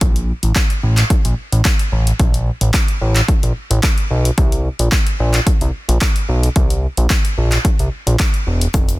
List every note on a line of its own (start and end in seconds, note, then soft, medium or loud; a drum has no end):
0.01 0.32 A#1 loud
0.01 kick loud
0.01 closed hi-hat medium
0.16 closed hi-hat soft
0.43 0.53 A1 medium
0.43 closed hi-hat medium
0.56 kick loud
0.56 clap loud
0.56 closed hi-hat medium
0.70 closed hi-hat soft
0.83 1.04 A1 loud
0.97 clap medium
0.97 closed hi-hat medium
1.10 kick loud
1.10 closed hi-hat medium
1.25 1.34 A#1 medium
1.25 closed hi-hat medium
1.52 1.62 A1 medium
1.52 closed hi-hat medium
1.65 kick loud
1.65 clap loud
1.65 closed hi-hat medium
1.79 closed hi-hat soft
1.92 2.13 A1 medium
2.07 closed hi-hat medium
2.20 2.51 A#1 loud
2.20 kick loud
2.20 closed hi-hat medium
2.34 closed hi-hat medium
2.61 2.71 A1 medium
2.61 closed hi-hat medium
2.74 kick loud
2.74 clap loud
2.74 closed hi-hat medium
2.88 closed hi-hat soft
3.01 3.22 A1 loud
3.16 clap medium
3.16 closed hi-hat medium
3.28 kick loud
3.28 closed hi-hat medium
3.43 3.53 A#1 medium
3.43 closed hi-hat medium
3.70 3.80 A1 loud
3.70 closed hi-hat medium
3.83 kick loud
3.83 clap loud
3.83 closed hi-hat medium
3.98 closed hi-hat soft
4.11 4.31 B1 loud
4.25 closed hi-hat medium
4.38 4.69 C2 loud
4.38 kick loud
4.38 closed hi-hat medium
4.52 closed hi-hat medium
4.79 4.89 A#1 medium
4.79 closed hi-hat medium
4.92 kick loud
4.92 clap loud
4.92 closed hi-hat medium
5.07 closed hi-hat soft
5.20 5.40 A#1 loud
5.34 clap medium
5.34 closed hi-hat medium
5.47 kick medium
5.47 closed hi-hat medium
5.61 5.71 C2 medium
5.61 closed hi-hat soft
5.89 5.98 A#1 medium
5.89 closed hi-hat medium
6.01 kick loud
6.01 clap loud
6.01 closed hi-hat medium
6.16 closed hi-hat soft
6.29 6.49 B1 medium
6.43 closed hi-hat medium
6.56 6.87 C2 loud
6.56 kick loud
6.56 closed hi-hat medium
6.70 closed hi-hat soft
6.97 7.07 A#1 medium
6.97 closed hi-hat medium
7.10 kick loud
7.10 clap loud
7.10 closed hi-hat medium
7.25 closed hi-hat soft
7.38 7.58 A#1 medium
7.52 clap medium
7.52 closed hi-hat medium
7.65 kick loud
7.65 closed hi-hat medium
7.79 7.89 C2 medium
7.79 closed hi-hat soft
8.07 8.16 A#1 medium
8.07 closed hi-hat medium
8.20 kick loud
8.20 clap loud
8.20 closed hi-hat medium
8.34 closed hi-hat soft
8.47 8.67 E1 medium
8.61 closed hi-hat medium
8.74 8.99 F1 loud
8.74 kick loud
8.74 closed hi-hat medium
8.74 shaker medium
8.89 closed hi-hat soft
8.89 shaker medium